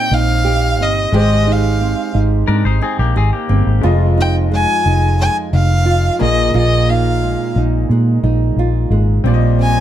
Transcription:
Already playing: nylon-string guitar A#2 C4 D#4 G4, upright piano C4 G4 D#5, violin G5
0.11 fingered electric bass A#1, nylon-string guitar D#4, violin F5
0.45 nylon-string guitar G4
0.79 fingered electric bass G1, nylon-string guitar C4, violin D#5
1.12 fingered electric bass G#1, upright piano G#3 G4 C5, nylon-string guitar G#3 G4
1.16 violin D#5
1.47 nylon-string guitar D#4
1.51 violin F5
1.81 nylon-string guitar C4
2.14 fingered electric bass G#1, nylon-string guitar D#4
2.48 fingered electric bass G#2, nylon-string guitar C4, pedal steel guitar D4 A#4
2.65 fingered electric bass G#1, pedal steel guitar D#4 C5
2.81 pedal steel guitar C4 G#4, nylon-string guitar D#4
2.99 fingered electric bass A#1, pedal steel guitar A#3 G4
3.16 fingered electric bass G#1, pedal steel guitar C4 G#4, nylon-string guitar G4
3.33 pedal steel guitar A#3 G4
3.49 fingered electric bass G1, nylon-string guitar C4
3.67 fingered electric bass G#1
3.81 fingered electric bass F1, nylon-string guitar F2 F4, upright piano G#3 F4
3.85 upright piano D#5
4.18 nylon-string guitar D#4, violin G5
4.51 nylon-string guitar G#3, violin G#5
4.86 fingered electric bass F1, nylon-string guitar D#4
5.19 nylon-string guitar G#3, violin G#5
5.53 fingered electric bass F1, nylon-string guitar D#4, violin F5
5.85 nylon-string guitar F4
6.19 fingered electric bass A#1, nylon-string guitar A#2, upright piano A#3 G#4, violin D#5
6.23 upright piano D#5
6.54 fingered electric bass A#1, nylon-string guitar A#2 F4, violin D#5
6.90 nylon-string guitar D#4, violin F5
7.22 nylon-string guitar G#3
7.56 fingered electric bass A#1, nylon-string guitar D#4
7.90 fingered electric bass A#2, nylon-string guitar G#3
8.23 fingered electric bass A#1, nylon-string guitar D#4
8.56 fingered electric bass A#1, nylon-string guitar F4
8.90 fingered electric bass G#1, nylon-string guitar G#3
9.24 fingered electric bass A#1, nylon-string guitar A#2, upright piano G3 C4 D5
9.34 upright piano D#5
9.59 nylon-string guitar C4, violin G#5

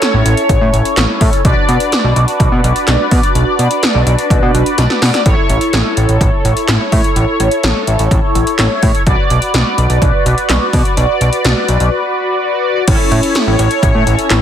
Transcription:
Already playing: analog polysynth C#4 E4 A4 C#5
0.02 snare, closed hi-hat
0.14 analog synth bass A1
0.26 analog synth bass A1, closed hi-hat
0.37 closed hi-hat
0.49 analog synth bass A1, kick, closed hi-hat
0.61 analog synth bass A2
0.73 analog synth bass A1, closed hi-hat
0.85 closed hi-hat
0.97 analog synth bass A1, snare, clap, closed hi-hat
1.21 analog synth bass A2, kick, open hi-hat
1.33 closed hi-hat
1.45 analog synth bass B1, analog polysynth D4 F#4 B4 D5, kick, closed hi-hat
1.69 analog synth bass B2, closed hi-hat
1.80 closed hi-hat
1.92 snare, closed hi-hat
2.04 analog synth bass B1
2.16 analog synth bass B1, closed hi-hat
2.28 closed hi-hat
2.40 analog synth bass B1, kick, closed hi-hat
2.52 analog synth bass B2
2.64 analog synth bass B1, closed hi-hat
2.76 closed hi-hat
2.87 analog synth bass B1, snare, clap, closed hi-hat
3.11 analog synth bass B2, kick, open hi-hat
3.23 closed hi-hat
3.35 analog synth bass B1, closed hi-hat
3.59 analog synth bass B2, closed hi-hat
3.71 closed hi-hat
3.83 snare, closed hi-hat
3.95 analog synth bass B1
4.07 analog synth bass B1, closed hi-hat
4.18 closed hi-hat
4.30 analog synth bass B1, kick, closed hi-hat
4.43 analog synth bass B2
4.54 analog synth bass B1, closed hi-hat
4.66 closed hi-hat
4.78 analog synth bass B1, snare, closed hi-hat
4.90 snare
5.02 analog synth bass B2, snare, open hi-hat
5.14 snare, closed hi-hat
5.26 analog synth bass A1, analog polysynth E4 A4 C#5, kick, closed hi-hat
5.49 analog synth bass A1, closed hi-hat
5.61 closed hi-hat
5.73 analog synth bass A1, snare, closed hi-hat
5.97 analog synth bass A1, closed hi-hat
6.09 analog synth bass A1, closed hi-hat
6.21 analog synth bass A1, kick, closed hi-hat
6.45 analog synth bass A1, closed hi-hat
6.57 closed hi-hat
6.68 analog synth bass A1, snare, clap, closed hi-hat
6.92 analog synth bass A2, kick, open hi-hat
7.04 closed hi-hat
7.16 analog synth bass A1, closed hi-hat
7.40 analog synth bass A1, closed hi-hat
7.51 closed hi-hat
7.63 analog synth bass A1, snare, closed hi-hat
7.87 analog synth bass A1, closed hi-hat
7.99 analog synth bass A1, closed hi-hat
8.11 analog synth bass A1, kick, closed hi-hat
8.35 analog synth bass A1, closed hi-hat
8.47 closed hi-hat
8.59 analog synth bass A1, snare, clap, closed hi-hat
8.83 analog synth bass A2, kick, open hi-hat
8.95 closed hi-hat
9.07 analog synth bass B1, analog polysynth F#4 B4 D5, kick, closed hi-hat
9.30 analog synth bass B1, closed hi-hat
9.42 closed hi-hat
9.54 analog synth bass B1, snare, closed hi-hat
9.78 analog synth bass B1, closed hi-hat
9.90 analog synth bass B1, closed hi-hat
10.02 analog synth bass B1, kick, closed hi-hat
10.26 analog synth bass B1, closed hi-hat
10.38 closed hi-hat
10.49 analog synth bass B1, snare, clap, closed hi-hat
10.73 analog synth bass B2, kick, open hi-hat
10.85 closed hi-hat
10.97 analog synth bass B1, closed hi-hat
11.21 analog synth bass B1, closed hi-hat
11.33 closed hi-hat
11.45 analog synth bass B1, snare, closed hi-hat
11.68 analog synth bass B1, closed hi-hat
11.80 analog synth bass B1, closed hi-hat
12.88 analog synth bass A1, analog polysynth C#4 E4 A4 C#5, kick, closed hi-hat, crash
13.11 analog synth bass A2, closed hi-hat
13.23 closed hi-hat
13.35 snare, closed hi-hat
13.47 analog synth bass A1
13.59 analog synth bass A1, closed hi-hat
13.71 closed hi-hat
13.83 analog synth bass A1, kick, closed hi-hat
13.95 analog synth bass A2
14.07 analog synth bass A1, closed hi-hat
14.19 closed hi-hat
14.30 analog synth bass A1, snare, clap, closed hi-hat

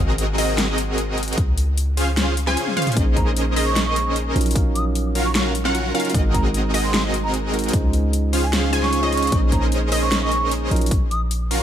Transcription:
Already playing: 808-style bass G#1, supersaw synth C4 F#4 G#4 A#4 D#5, synth pluck D#5
0.18 closed hi-hat
0.38 supersaw synth C4 F#4 G#4 A#4 D#5, synth pluck D#5, open hi-hat
0.58 snare, closed hi-hat
0.68 supersaw synth C4 F#4 G#4 A#4 D#5, synth pluck D#5
0.78 closed hi-hat
0.98 closed hi-hat
1.18 closed hi-hat
1.23 closed hi-hat
1.28 closed hi-hat
1.33 closed hi-hat
1.38 808-style bass C#2, kick, closed hi-hat
1.58 closed hi-hat
1.78 closed hi-hat
1.97 supersaw synth C#4 F4 G#4 C5 F5, synth pluck F5, open hi-hat
2.17 snare, closed hi-hat
2.37 closed hi-hat
2.47 supersaw synth C#4 F4 G#4 C5 G#5, synth pluck G#5, snare
2.57 closed hi-hat
2.67 high tom
2.76 supersaw synth C#4 F4 G#4 C5 F5, synth pluck F5, closed hi-hat, mid tom
2.82 closed hi-hat
2.87 closed hi-hat, mid tom
2.92 tine electric piano A#3 C#4, closed hi-hat
2.96 808-style bass A#1, supersaw synth C#4 G#4 A#4 C5 D#5, tine electric piano D#4 G#4 C5, synth pluck D#5, kick, closed hi-hat
3.16 flute A#5, kick, closed hi-hat
3.37 closed hi-hat
3.56 supersaw synth C#4 G#4 A#4 C5 D#5, synth pluck D#5, open hi-hat
3.66 flute C#6
3.76 snare, closed hi-hat
3.86 supersaw synth C#4 G#4 A#4 C5 D#5, synth pluck D#5, flute C#6
3.96 closed hi-hat
4.16 closed hi-hat
4.35 808-style bass A#1, tine electric piano F#3 C#4 D#4 F4 A#4, closed hi-hat
4.41 closed hi-hat
4.46 closed hi-hat
4.51 tine electric piano F#3 C#4, closed hi-hat
4.56 tine electric piano D#4 A#4 F5, kick, closed hi-hat
4.75 flute D#6, closed hi-hat
4.95 closed hi-hat
5.15 supersaw synth C#4 F4 F#4 A#4 F5, synth pluck F5, open hi-hat
5.25 flute C#6
5.35 flute C#6, snare, closed hi-hat
5.55 closed hi-hat
5.65 supersaw synth C#4 F4 F#4 A#4 F#5, synth pluck F#5, snare
5.75 closed hi-hat
5.94 tine electric piano F#3 C#4 D#4 F4 A#4, supersaw synth C#4 F4 F#4 A#4 F5, synth pluck F5, closed hi-hat
6.00 closed hi-hat
6.05 closed hi-hat
6.10 tine electric piano G#3 C4, closed hi-hat
6.14 808-style bass G#1, tine electric piano D#4 F#4 A#4, synth pluck D#5, kick, closed hi-hat
6.34 flute A#5, kick, closed hi-hat
6.54 closed hi-hat
6.74 supersaw synth C4 F#4 G#4 A#4 D#5, synth pluck D#5, open hi-hat
6.84 flute C6
6.94 snare, closed hi-hat
7.04 supersaw synth C4 F#4 G#4 A#4 D#5, synth pluck D#5
7.14 closed hi-hat
7.24 flute A#5
7.34 closed hi-hat
7.52 tine electric piano G#3 C4 D#4 F#4 A#4, closed hi-hat
7.59 closed hi-hat
7.64 closed hi-hat
7.69 tine electric piano G#3 C#4, closed hi-hat
7.73 808-style bass C#2, tine electric piano D#4 F4, kick, closed hi-hat
7.93 closed hi-hat
8.13 closed hi-hat
8.33 supersaw synth C#4 F4 G#4 C5 F5, synth pluck F5, open hi-hat
8.43 flute G#5
8.53 snare, closed hi-hat
8.72 tine electric piano G#3 C#4 D#4 F4 C5, supersaw synth C#4 F4 G#4 C5 G#5, synth pluck G#5, closed hi-hat
8.83 flute C#6, snare
8.93 closed hi-hat
9.02 tine electric piano G#3 C#4 D#4 F4 C#5, supersaw synth C#4 F4 G#4 C5 D#5, synth pluck D#5
9.13 flute C#6, closed hi-hat
9.17 closed hi-hat
9.23 closed hi-hat
9.27 tine electric piano A#3, closed hi-hat
9.31 808-style bass A#1, tine electric piano C#4 D#4 G#4 C5, supersaw synth C#4 G#4 A#4 D#5, synth pluck D#5, kick, closed hi-hat
9.52 flute A#5, kick, closed hi-hat
9.72 closed hi-hat
9.92 supersaw synth C#4 G#4 A#4 C5 D#5, synth pluck D#5, open hi-hat
10.02 flute C#6
10.12 snare, closed hi-hat
10.22 supersaw synth C#4 G#4 A#4 C5 D#5, synth pluck D#5, flute C#6
10.32 closed hi-hat
10.51 closed hi-hat
10.70 808-style bass A#1, tine electric piano F#3 C#4 D#4 F4 A#4, closed hi-hat
10.76 closed hi-hat
10.81 closed hi-hat
10.86 closed hi-hat
10.91 kick, closed hi-hat
11.11 flute D#6, closed hi-hat
11.31 closed hi-hat
11.51 supersaw synth C#4 F4 F#4 A#4 F5, open hi-hat

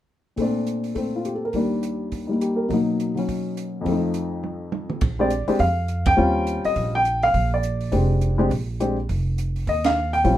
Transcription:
0.36 grand piano A#2 A3 C4, kick, open hi-hat
0.42 grand piano D4
0.67 closed hi-hat
0.84 open hi-hat
0.95 grand piano A3 C4, kick, open hi-hat
1.16 grand piano F4
1.25 grand piano G4, closed hi-hat
1.35 grand piano A4
1.45 grand piano A#4
1.53 grand piano D#2 D#3 G3 D4, kick, open hi-hat
1.83 closed hi-hat
2.12 kick, open hi-hat
2.27 grand piano G3 A#3 D#4
2.32 grand piano D#4
2.41 grand piano G4, closed hi-hat
2.56 grand piano A#4
2.69 grand piano B2 F#3 A#3, kick, open hi-hat
2.73 grand piano D#4
3.00 closed hi-hat
3.15 grand piano F#3 C#4, open hi-hat
3.29 kick, open hi-hat
3.57 closed hi-hat
3.81 grand piano F2 F3
3.86 grand piano A3, kick, open hi-hat
3.92 grand piano D#4
4.14 closed hi-hat
4.44 high tom
4.72 high tom
4.90 mid tom
5.01 upright bass A#1, kick, ride
5.19 grand piano G#3 C4 D4 G4 D5
5.30 closed hi-hat
5.48 grand piano G#3 C4 D4 G4, muted upright bass stroke, open hi-hat
5.59 upright bass F2, grand piano F5, kick, open hi-hat
5.88 closed hi-hat
6.06 grand piano G5, kick, ride
6.17 upright bass D#2, grand piano G3 C4 C#4 F4
6.47 closed hi-hat
6.65 grand piano D#5, muted upright bass stroke, open hi-hat
6.76 upright bass A#1, kick, open hi-hat
6.95 grand piano G5
7.05 closed hi-hat
7.23 grand piano F5, open hi-hat
7.34 upright bass A#1, kick, open hi-hat
7.54 grand piano D5
7.63 closed hi-hat
7.81 open hi-hat
7.92 upright bass F1, grand piano G#3 C4 D4 G4, kick, open hi-hat
8.21 closed hi-hat
8.38 grand piano G#3 C4 D4 G4
8.51 upright bass A#1, kick, open hi-hat
8.80 grand piano G#3 C4 D4 G4, closed hi-hat
9.09 upright bass F1, kick, open hi-hat
9.38 closed hi-hat
9.56 open hi-hat
9.67 upright bass D#2, grand piano D#5, kick, open hi-hat
9.84 grand piano F5, snare, ride
10.13 grand piano G5, open hi-hat
10.24 upright bass A#1, grand piano G3 C4 C#4 F4, kick, open hi-hat

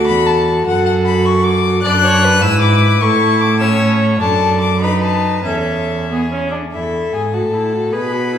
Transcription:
Already playing: cello D2, viola F#4, violin A4
0.07 cello E2, violin B5
0.27 violin A5
0.67 cello F#2, viola F#4, violin A4 F#5
0.86 violin F#5
1.06 violin B5
1.25 violin C#6
1.44 violin D6
1.83 cello F#2, viola D4, violin D5 F#6
2.04 violin C#5
2.24 violin B4
2.42 cello G#2, viola E4, violin E6
2.62 violin D6
3.01 cello A2, viola E4, violin A4 C#6
3.41 violin D6
3.60 viola C#4, violin C#5 E6
4.20 cello F#2, viola D4, violin A4 A5
4.61 violin D6
4.82 viola D#4, violin B4 B5
5.03 violin A5
5.45 cello E2, viola C#4, violin A4 E5
6.10 viola B3, violin G#4
6.32 viola C#4
6.52 viola D4
6.72 cello E2, violin E4 E5, viola A4
7.13 cello G#2, violin G#4 G#5
7.33 cello A2, viola F#4, violin A4 A5
7.53 viola E4
7.73 viola F#4
7.92 cello B2, viola G#4, violin B4 B5
8.12 viola F#4
8.33 viola E4

